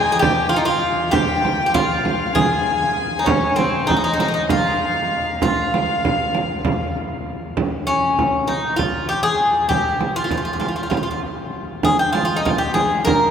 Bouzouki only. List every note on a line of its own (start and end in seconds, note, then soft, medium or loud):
0.00 0.11 G#4 medium
0.12 0.19 G#4 medium
0.19 0.49 G4 medium
0.49 0.58 F4 medium
0.56 0.65 D#4 medium
0.65 1.11 F4 medium
1.11 1.65 G4 medium
1.66 1.74 G4 medium
1.74 2.35 F4 medium
2.35 3.19 G#4 medium
3.19 3.27 D#4 medium
3.26 3.55 C#4 medium
3.56 3.89 C4 medium
3.87 3.95 D#4 medium
3.96 4.03 D#4 medium
4.04 4.12 D#4 medium
4.13 4.19 D#4 medium
4.20 4.27 D#4 medium
4.28 4.33 D#4 medium
4.34 4.41 D#4 medium
4.50 5.41 F4 medium
5.43 6.91 F4 medium
7.87 8.50 C#4 medium
8.47 8.76 D#4 medium
8.76 9.08 F4 medium
9.09 9.23 G4 medium
9.23 9.68 G#4 medium
9.69 10.16 G4 medium
10.16 10.23 F4 medium
10.24 10.30 F4 medium
10.31 10.36 F4 medium
10.37 10.44 F4 soft
10.45 10.52 F4 medium
10.53 10.58 F4 soft
10.60 10.67 F4 soft
10.68 10.75 F4 soft
10.76 10.82 F4 soft
10.83 10.89 F4 soft
10.90 10.96 F4 medium
10.97 11.02 F4 soft
11.03 11.09 F4 medium
11.11 11.19 F4 soft
11.84 11.99 G#4 medium
11.99 12.12 G4 medium
12.13 12.24 F4 medium
12.25 12.37 F4 medium
12.36 12.49 D#4 medium
12.45 12.58 F4 medium
12.58 12.74 G4 medium
12.74 13.03 G#4 medium
13.05 13.31 A#4 medium